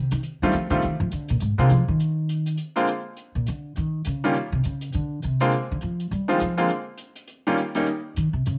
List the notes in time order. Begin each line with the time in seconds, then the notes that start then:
Already playing: C3
0.11 D#3, closed hi-hat
0.23 closed hi-hat
0.42 D#3 G3 A3 C4 F4
0.52 F3, closed hi-hat
0.70 D3 D#3 G3 A3 C4 F4, closed hi-hat
0.82 D#3, closed hi-hat
1.00 F3
1.11 D3, closed hi-hat
1.28 A#2, closed hi-hat
1.40 G#2, closed hi-hat
1.58 C3 D3 G#3 A#3 C4 F4
1.70 F3, closed hi-hat
1.88 D#3
2.00 closed hi-hat
2.29 closed hi-hat
2.46 closed hi-hat
2.57 closed hi-hat
2.76 D3 G#3 A#3 C4 F4
2.87 closed hi-hat
3.17 closed hi-hat
3.35 A#2
3.46 D3, closed hi-hat
3.76 D#3, closed hi-hat
4.05 C#3, closed hi-hat
4.24 D#3 G3 A#3 C#4 F4
4.33 closed hi-hat
4.52 C3
4.63 C#3, closed hi-hat
4.81 closed hi-hat
4.92 D3, closed hi-hat
5.22 C3, closed hi-hat
5.40 D3 G#3 A#3 C4 F4, closed hi-hat
5.52 closed hi-hat
5.71 D3
5.81 F3, closed hi-hat
6.00 closed hi-hat
6.11 G3, closed hi-hat
6.28 D#3 F3 G#3 C4 F4
6.40 F3, closed hi-hat
6.57 D3 G#3 A#3 C4 F4
6.68 closed hi-hat
6.98 closed hi-hat
7.15 closed hi-hat
7.27 closed hi-hat
7.47 D#3 G3 A#3 C#4 F4
7.57 closed hi-hat
7.75 D#3 G3 A#3 C#4 D#4, closed hi-hat
7.86 closed hi-hat
8.16 D#3, closed hi-hat
8.33 C3
8.46 C#3, closed hi-hat